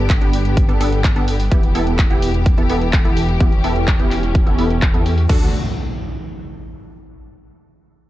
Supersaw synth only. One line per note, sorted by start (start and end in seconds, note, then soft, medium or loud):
0.00 0.19 B3 medium
0.00 0.19 D4 medium
0.00 0.19 A4 medium
0.21 0.66 B3 loud
0.21 0.66 D4 medium
0.21 0.66 G4 loud
0.69 0.78 B3 medium
0.69 0.78 D4 medium
0.69 0.78 A4 medium
0.81 1.13 B3 medium
0.81 1.13 D4 medium
0.81 1.13 A4 loud
1.16 1.32 B3 medium
1.16 1.32 D4 medium
1.16 1.32 A4 loud
1.51 1.72 B3 medium
1.51 1.72 E4 medium
1.51 1.72 G4 loud
1.75 2.08 B3 medium
1.75 2.08 E4 medium
1.75 2.08 A4 loud
2.10 2.55 B3 medium
2.10 2.55 E4 medium
2.10 2.55 G4 loud
2.58 2.67 B3 medium
2.58 2.67 E4 medium
2.58 2.67 A4 medium
2.70 3.02 B3 medium
2.70 3.02 E4 medium
2.70 3.02 A4 loud
3.05 3.21 B3 medium
3.05 3.21 E4 medium
3.05 3.21 A4 loud
3.40 3.61 B3 medium
3.40 3.61 E4 medium
3.40 3.61 G4 loud
3.64 3.97 B3 medium
3.64 3.97 E4 medium
3.64 3.97 A4 loud
4.00 4.44 B3 loud
4.00 4.44 E4 medium
4.00 4.44 G4 loud
4.47 4.56 B3 medium
4.47 4.56 E4 medium
4.47 4.56 A4 medium
4.58 4.91 B3 medium
4.58 4.91 E4 medium
4.58 4.91 A4 medium
4.94 5.10 B3 medium
4.94 5.10 E4 medium
4.94 5.10 A4 loud
5.29 5.47 D4 medium
5.29 5.47 F#4 medium
5.29 5.47 A4 medium